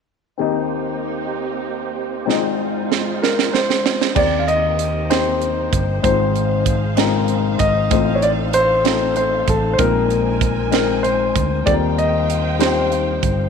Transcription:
0.38 D#2 D#3 A#3 C4 D#4 G4 A#4 C5 D#5
2.26 G#1 G#2 G#3 C4 D#4 F4 G#4 D#5, snare
2.92 snare
3.22 A#4, snare
3.39 snare
3.53 C5, snare
3.70 snare
3.86 snare
4.01 snare
4.15 D#2 D#3 A#3 C4 D#4 G4 A#4 C5 D5, kick, crash
4.39 F5
4.48 D#5, closed hi-hat
4.79 closed hi-hat
5.10 A#3 C4 D#4 G4 C5 D#5, snare, closed hi-hat
5.42 closed hi-hat
5.73 G1, kick, closed hi-hat
6.02 G#1 G#2 G#3 C4 D#4 F4 G#4 C5 F5, kick, closed hi-hat
6.36 closed hi-hat
6.66 kick, closed hi-hat
6.97 G#3 C4 D#4 F4 A#4, snare, closed hi-hat
7.28 closed hi-hat
7.59 G#1 D#5, kick, closed hi-hat
7.90 A1 A2 A3 C4 D#4 F4 A4 C5, kick, closed hi-hat
8.15 C#5
8.22 D5, closed hi-hat
8.53 C5, closed hi-hat
8.84 A3 C4 D#4 F4 A4, snare, closed hi-hat
9.16 C5, closed hi-hat
9.48 A1 A4, kick, closed hi-hat
9.73 C5
9.78 A#1 A#2 G#3 C4 D#4 F4 A#4 G#5, kick, closed hi-hat
10.10 closed hi-hat
10.41 kick, closed hi-hat
10.71 G#3 C4 D#4 F4 A#4 C5, snare, closed hi-hat
11.03 C5, closed hi-hat
11.35 D2, kick, closed hi-hat
11.66 D#2 D#3 G3 C4 D#4 F4 A4 C5 D5 F5 G5, kick, closed hi-hat
11.74 A#4
11.98 D#5, closed hi-hat
12.30 closed hi-hat
12.59 G3 C4 D#4 F4 G4 C5, snare, closed hi-hat
12.92 closed hi-hat
13.23 G1, kick, closed hi-hat

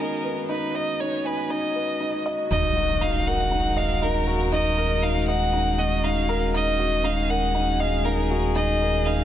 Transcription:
Already playing: D#3 G#3 B3 C#4 F#4 B4 D#5 G#5
0.00 D#4 A#4
0.24 B4
0.49 D#4 B4
0.74 D#5
1.00 D#4 C#5
1.25 B4 G#5
1.50 D#4 D#5
1.75 B4
2.00 D#4
2.26 D#5
2.50 D#1 G#3 D#4 D#5, impact
2.71 C#4 A#4
2.76 F#4
3.01 D#4 F5
3.27 A#4 F#5
3.51 D#4
3.77 D#5 F5
4.02 D#4 A#4
4.27 F#4
4.52 D#4 D#5
4.78 A#4
5.02 D#4 F5
5.28 D#5 F#5
5.53 D#4
5.78 F#4 D#5
6.04 D#4 F5
6.29 A#4
6.54 D#4 D#5
6.79 F#4
6.92 G#4
7.04 D#4 F5
7.29 A#4 F#5
7.55 D#4
7.80 D#5 F5
8.05 D#4 A#4
8.31 F#4
8.55 D#4 D#5
8.81 A#4
9.06 D#4 F5

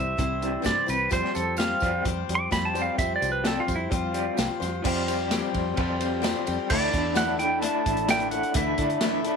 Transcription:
Already playing: C2 C3 E3 G3 C4 E4 G4 C5 E5
0.17 C2 C3 E3 G3 C4 E4 C5, kick, closed hi-hat, tambourine
0.42 C3 E3 G3 E4 G4 C5, closed hi-hat
0.62 G2 C3 E3 G3 C4 E4 C5 D5, kick, snare, closed hi-hat, tambourine
0.86 C2 C3 E3 G3 C4 E4 B4 C5, closed hi-hat, tambourine
1.09 F2 F3 G3 C4 F4 G4 C5, kick, closed hi-hat, tambourine
1.13 C5
1.25 snare
1.35 F2 F3 G3 A4, closed hi-hat, tambourine
1.57 F3 G3 C4 G4 C5 F5, snare, closed hi-hat, tambourine
1.80 F2 F3 G3 C4 G4 C5, kick, closed hi-hat, tambourine
2.05 F2 F3 G3 C4 G4 C5, kick, closed hi-hat, tambourine
2.29 F2 F3 G3, closed hi-hat
2.35 D6
2.51 F2 F3 G3 C4 G4 C5 B5, kick, snare, closed hi-hat, tambourine
2.65 A5
2.74 F3 G3 C4 G4 C5, closed hi-hat, tambourine
2.82 F5
2.98 F2 F3 G3 C4 F4 G4 C5 E5, kick, closed hi-hat, tambourine
3.16 D5
3.21 C2 F3 G3, closed hi-hat, tambourine
3.32 B4
3.44 F3 G3 C4 G4 A4 C5, snare, closed hi-hat, tambourine
3.60 F4
3.67 F2 F3 G3 G4 C5, kick, closed hi-hat, tambourine
3.71 C4
3.76 E4
3.90 F2 F3 G3 C4 F4 G4 C5, kick, closed hi-hat
4.13 F3 G3 C4, closed hi-hat, tambourine
4.37 C2 F3 G3 C4 G4 C5, snare, closed hi-hat, tambourine
4.60 F2 F3 G3 C4 G4 C5, snare, closed hi-hat, tambourine
4.83 F2 F3 G3 C4 F4 G4 C5, kick, crash, tambourine
5.08 C4 G4 C5, ride, tambourine
5.31 F3 G3 C4 G4 C5, snare, ride, tambourine
5.54 F2, kick, ride, tambourine
5.76 F2 F3 G3 C4 F4 G4 C5, kick, ride
6.00 C4 F4 G4 A4 C5, ride, tambourine
6.22 F3 G3 C4 G4 C5, snare, ride, tambourine
6.46 F2 C4 G4 C5, ride, tambourine
6.69 D2 D3 E3 A3 D4 E4 A4 D5, kick, crash
6.93 E2 A3 D4 E4 A4, kick, closed hi-hat
7.14 D3 E3 A3 D4 E4 A4 F#5, snare, closed hi-hat, tambourine
7.38 A3 D4 E4 A4 G5, closed hi-hat
7.62 D3 A3 D4 E4 A4 A5, closed hi-hat
7.86 A1 A3 D4 E4, kick, closed hi-hat
7.97 closed hi-hat
8.08 D3 E3 A3 D4 E4 A4 G5, snare, closed hi-hat, tambourine
8.20 closed hi-hat
8.31 A3 D4 E4 A4 F#5, closed hi-hat
8.43 closed hi-hat
8.53 D2 D3 E3 A3 D4 E4 A4 D5 E5, kick, closed hi-hat
8.78 D3 A3 D4 E4 A4, kick, closed hi-hat
8.90 closed hi-hat
9.01 D3 E3 A3 D4 E4 A4, snare, closed hi-hat, tambourine
9.24 A3 D4 E4 A4 E5, closed hi-hat

